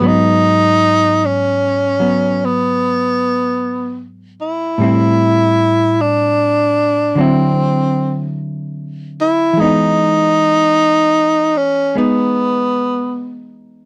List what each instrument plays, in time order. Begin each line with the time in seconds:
0.00 hollow-body jazz guitar G#2 F#3 B3
0.07 tenor saxophone D#4
1.25 tenor saxophone C#4
2.00 hollow-body jazz guitar F#3 B3
2.45 tenor saxophone B3
4.41 tenor saxophone E4
4.78 hollow-body jazz guitar A2 G3 C4
4.84 hollow-body jazz guitar E4
6.01 tenor saxophone D4
7.15 hollow-body jazz guitar D3 F#3 C4
7.21 tenor saxophone C4, hollow-body jazz guitar E4
9.21 tenor saxophone E4
9.53 hollow-body jazz guitar E3
9.57 hollow-body jazz guitar G#3 B3, tenor saxophone D#4
9.64 hollow-body jazz guitar D#4
11.57 tenor saxophone C#4
11.95 hollow-body jazz guitar G#3 B3 D#4, tenor saxophone B3